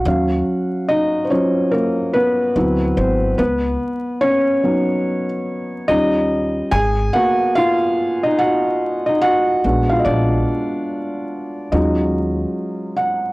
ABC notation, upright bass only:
X:1
M:4/4
L:1/8
Q:"Swing 16ths" 1/4=72
K:Ebm
V:1 name="Upright bass" clef=bass
E,, z4 z =D,, A,,, | D,, z4 z E,,2 | A,,, z6 B,,, | B,,, z3 E,,2 z2 |]